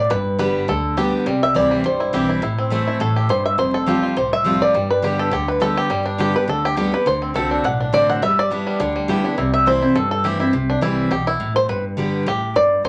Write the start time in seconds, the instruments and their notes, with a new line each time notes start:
Already playing: five-string banjo D5
0.10 upright bass G1, steel-string acoustic guitar G2, five-string banjo B4
0.39 steel-string acoustic guitar D3 G3 B3 G4, five-string banjo B4
0.68 upright bass D2, steel-string acoustic guitar D3, five-string banjo A4
0.97 steel-string acoustic guitar D3 G3 B3 G4, five-string banjo G4
1.26 upright bass C2, steel-string acoustic guitar C3, five-string banjo G3
1.43 five-string banjo E5
1.54 upright bass D2, steel-string acoustic guitar E3 G3 C4 E4, five-string banjo D5
1.71 five-string banjo G3
1.84 upright bass C2, steel-string acoustic guitar G2, five-string banjo C5
2.00 five-string banjo E4
2.13 upright bass B1, steel-string acoustic guitar E3 G3 C4 E4, five-string banjo G4
2.29 five-string banjo E4
2.42 upright bass A1, steel-string acoustic guitar A2, five-string banjo E4
2.58 five-string banjo C4
2.70 steel-string acoustic guitar E3 A3 C4 E4, five-string banjo A3
2.87 five-string banjo E4
3.00 upright bass A1, steel-string acoustic guitar A2, five-string banjo A4
3.16 five-string banjo G4
3.29 upright bass G1, steel-string acoustic guitar G2, five-string banjo C5
3.46 five-string banjo E5
3.58 upright bass F1, steel-string acoustic guitar F2, five-string banjo C5
3.74 five-string banjo A4
3.86 steel-string acoustic guitar F3 G3 C4 F4, five-string banjo G4
4.03 five-string banjo F4
4.16 upright bass C2, steel-string acoustic guitar A2, five-string banjo C5
4.33 five-string banjo E5
4.44 steel-string acoustic guitar F3 G3 C4 F4, five-string banjo F4
4.62 five-string banjo D5
4.74 upright bass G1, steel-string acoustic guitar G2, five-string banjo G3
4.91 five-string banjo B4
5.02 steel-string acoustic guitar D3 G3 B3 G4, five-string banjo G4
5.19 five-string banjo A4
5.32 upright bass D2, steel-string acoustic guitar D3, five-string banjo G4
5.48 five-string banjo B4
5.60 steel-string acoustic guitar D3 G3 B3 G4, five-string banjo A4
5.78 five-string banjo G4
5.90 upright bass G1, steel-string acoustic guitar G2, five-string banjo G3
6.06 five-string banjo D4
6.18 steel-string acoustic guitar D3 G3 B3 G4, five-string banjo G4
6.34 steel-string acoustic guitar B3 G4, five-string banjo B4
6.48 upright bass D2, steel-string acoustic guitar D3, five-string banjo A4
6.65 five-string banjo G4
6.77 steel-string acoustic guitar D3 G3 B3 G4, five-string banjo G4
6.92 steel-string acoustic guitar B3 G4, five-string banjo B4
7.06 upright bass D2, steel-string acoustic guitar D3, five-string banjo C5
7.22 five-string banjo C4
7.34 upright bass C2, steel-string acoustic guitar D3 A3 C4 F#4, five-string banjo A4
7.51 five-string banjo D4
7.64 upright bass B1, steel-string acoustic guitar A2, five-string banjo F#5
7.80 five-string banjo D4
7.92 upright bass A1, steel-string acoustic guitar D3 A3 C4 F#4, five-string banjo D5
8.09 five-string banjo F#5
8.22 upright bass G1, steel-string acoustic guitar G3, five-string banjo E5
8.39 five-string banjo D5
8.50 steel-string acoustic guitar G3 B3 E4, five-string banjo D4
8.67 five-string banjo G3
8.80 upright bass D2, steel-string acoustic guitar D3, five-string banjo D4
8.96 five-string banjo G3
9.08 steel-string acoustic guitar G3 B3 E4, five-string banjo G4
9.24 steel-string acoustic guitar B3 E4, five-string banjo D4
9.38 upright bass C2, steel-string acoustic guitar C3, five-string banjo E4
9.54 five-string banjo E5
9.66 steel-string acoustic guitar E3 A3 C4 E4, five-string banjo C5
9.81 steel-string acoustic guitar C4 E4, five-string banjo E4
9.95 upright bass G1, steel-string acoustic guitar G2, five-string banjo A4
10.11 five-string banjo A4
10.24 steel-string acoustic guitar E3 A3 C4 E4, five-string banjo G4
10.39 steel-string acoustic guitar C4 E4, five-string banjo E4
10.53 upright bass C2, steel-string acoustic guitar C3
10.70 five-string banjo D4
10.81 upright bass C2, steel-string acoustic guitar E3 G3 C4 E4, five-string banjo E4
11.11 upright bass B1, steel-string acoustic guitar B2, five-string banjo G4
11.27 five-string banjo E4
11.40 upright bass A1, steel-string acoustic guitar A2
11.56 five-string banjo C5
11.69 upright bass G1, steel-string acoustic guitar G2, five-string banjo B4
11.97 steel-string acoustic guitar D3 G3 B3 G4
12.26 upright bass A1, steel-string acoustic guitar A2, five-string banjo G4
12.56 upright bass G1, steel-string acoustic guitar G2, five-string banjo D5
12.84 upright bass F1, steel-string acoustic guitar F2, five-string banjo C5